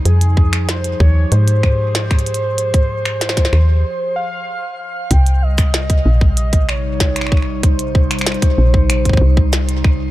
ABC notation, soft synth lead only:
X:1
M:4/4
L:1/8
Q:1/4=95
K:Cphr
V:1 name="Soft synth lead"
A2 c d c4- | c4- c f2 f | g e3 e d3 | c c6 z |]